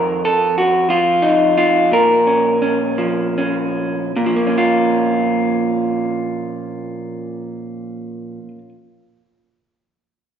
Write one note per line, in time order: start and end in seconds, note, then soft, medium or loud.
0.00 1.91 F2 medium
0.00 0.23 A#4 medium
0.25 0.56 A4 medium
0.58 0.90 F#4 medium
0.89 2.98 F3 medium
0.89 1.56 F4 medium
1.22 1.91 D#4 medium
1.58 1.91 F4 medium
1.91 4.15 A#2 medium
1.91 4.17 A#4 medium
2.27 2.61 C#4 soft
2.62 3.37 C#4 soft
2.98 4.11 F3 medium
3.38 4.12 C#4 soft
4.16 8.38 A#2 medium
4.26 8.48 F3 medium
4.36 8.58 A#3 medium
4.47 8.69 C#4 medium
4.58 8.76 F4 medium